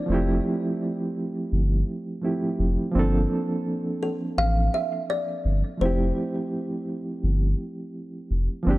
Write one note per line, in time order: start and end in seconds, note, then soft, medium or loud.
0.00 0.06 F3 soft
0.00 0.10 A#3 soft
0.00 0.10 C4 soft
0.06 0.40 F1 loud
0.06 2.17 F3 medium
0.06 2.18 A3 medium
0.10 2.19 C4 medium
0.10 2.20 E4 medium
0.10 2.21 G4 medium
1.52 1.83 G1 medium
2.21 2.90 F3 medium
2.21 2.94 A3 soft
2.21 2.94 C4 soft
2.21 2.95 E4 medium
2.21 2.95 G4 soft
2.59 2.77 F1 medium
2.92 3.26 G1 loud
2.92 5.75 F3 medium
2.92 5.75 A#3 medium
2.92 5.76 C4 medium
2.97 5.77 D4 medium
2.97 5.78 A4 medium
4.03 4.39 A4 medium
4.38 4.69 A1 medium
4.38 4.74 F5 loud
4.74 5.07 E5 medium
5.10 5.83 D5 medium
5.45 5.63 G1 medium
5.77 6.12 F1 loud
5.77 8.60 F3 soft
5.77 8.61 A3 medium
5.77 8.62 C4 medium
5.77 7.91 C5 medium
5.83 8.63 E4 medium
5.83 8.64 G4 medium
7.24 7.55 G1 medium
8.31 8.48 F1 medium
8.63 8.78 G1 loud
8.63 8.78 F3 medium
8.63 8.78 A#3 medium
8.63 8.78 C4 medium
8.69 8.78 D4 medium
8.69 8.78 G4 medium